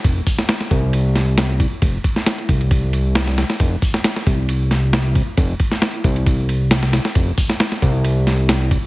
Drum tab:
RD |x---x-x-x-x-x-x-|x-x-xxxxx-x-x-x-|x---x-x-x-x-x-x-|x-x-xxxxx-x-x-x-|
HH |--o-------------|----------------|--o-------------|----------------|
SD |---ooo----o-o---|---oo-------oooo|---ooo----o-o---|---oo-------oooo|
BD |o-o---o-------o-|o-o---o-o-------|o-o---o-------o-|o-o---o-o-------|

RD |x---x-x-x-x-x-x-|
HH |--o-------------|
SD |---ooo----o-o---|
BD |o-o---o-------o-|